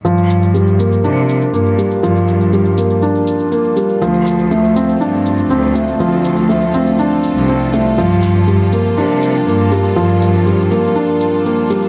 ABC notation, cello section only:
X:1
M:4/4
L:1/16
Q:1/4=121
K:Gm
V:1 name="Cello section" clef=bass
G,,8 C,4 G,,4 | G,,8 z8 | D,,8 G,,4 D,,4 | D,,8 z3 C,,4 z |
G,,8 C,4 G,,4 | G,,8 z8 |]